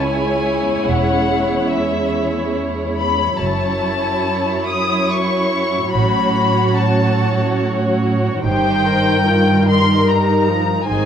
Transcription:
Already playing: cello section C#2, viola section G#3 C#4, violin section E4 C#5
0.01 violin section G#5
0.86 double bass section E1, cello section E2, violin section F#5
1.70 violin section E5
2.98 violin section B5
3.40 double bass section F#1, cello section F#2, viola section F#3 C#4, violin section E4 C#5 A5
4.68 violin section D#6
5.09 violin section C#6
5.93 double bass section A1, cello section A2, violin section F#4 B5
6.79 violin section A5
8.43 double bass section G1, cello section G2, viola section D#3 D#4, violin section G4 C5 G5
8.85 violin section A#4
9.26 viola section F4, violin section A#4
9.67 viola section D#4, violin section C6
10.07 viola section G3, violin section A#5
10.48 viola section F3
10.89 double bass section G#1, cello section G#2, viola section D#3 D#4, violin section G#4 C5 G#5

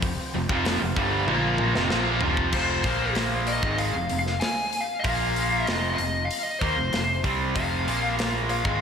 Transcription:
Already playing: fingered electric bass F1, distorted electric guitar F2 C3, tonewheel organ F3 C4 G4
0.02 kick, open hi-hat
0.34 fingered electric bass F1, distorted electric guitar F2 C3
0.49 fingered electric bass F1, distorted electric guitar F2 C3 F3, kick
0.65 snare, open hi-hat
0.81 fingered electric bass F1, distorted electric guitar F2 C3
0.96 fingered electric bass G1, distorted electric guitar G2 D3 G3, kick
1.27 fingered electric bass A#1, distorted electric guitar A#2 F3 A#3, high tom
1.58 mid tom
1.75 fingered electric bass F1, distorted electric guitar F2 C3, snare
1.90 fingered electric bass A#1, distorted electric guitar A#2 F3 A#3, snare
2.21 fingered electric bass F1, distorted electric guitar F2 C3 F3, floor tom
2.37 kick
2.52 fingered electric bass F1, distorted electric guitar F2 C3 F3, lead electric guitar C5, kick, crash
2.84 fingered electric bass A#1, distorted electric guitar A#2 F3 A#3, kick, open hi-hat
3.15 snare, open hi-hat
3.47 lead electric guitar D#5, open hi-hat
3.63 fingered electric bass G#1, distorted electric guitar G#2 D#3 G#3, kick
3.78 lead electric guitar F5, open hi-hat
3.95 fingered electric bass F1, distorted electric guitar F2 C3
4.09 fingered electric bass F1, distorted electric guitar F2 C3, open hi-hat
4.19 lead electric guitar F5
4.26 snare
4.40 lead electric guitar G#5, snare, open hi-hat
4.73 open hi-hat
4.81 lead electric guitar F5
5.00 lead electric guitar F5, open hi-hat
5.04 fingered electric bass A#1, distorted electric guitar A#2 F3 A#3, kick
5.36 open hi-hat
5.65 fingered electric bass F1, distorted electric guitar F2 C3 F3, lead electric guitar D#5, snare, open hi-hat
5.95 distorted electric guitar F2 C3, lead electric guitar D#5, open hi-hat
5.99 fingered electric bass F1
6.25 lead electric guitar F5
6.31 open hi-hat
6.43 lead electric guitar D#5
6.59 fingered electric bass D#2, distorted electric guitar D#3 A#3, lead electric guitar C5, kick, open hi-hat
6.77 fingered electric bass F1, distorted electric guitar F2 C3
6.92 fingered electric bass F1, distorted electric guitar F2 C3, snare, open hi-hat
7.24 fingered electric bass C2, distorted electric guitar C3 G3 C4, kick, open hi-hat
7.56 fingered electric bass F1, distorted electric guitar F2 C3 F3, lead electric guitar F5, kick, open hi-hat
7.86 fingered electric bass A#1, distorted electric guitar A#2 F3 A#3, open hi-hat
8.19 snare, open hi-hat
8.49 lead electric guitar F5, open hi-hat
8.65 fingered electric bass G#1, distorted electric guitar G#2 D#3 G#3, kick

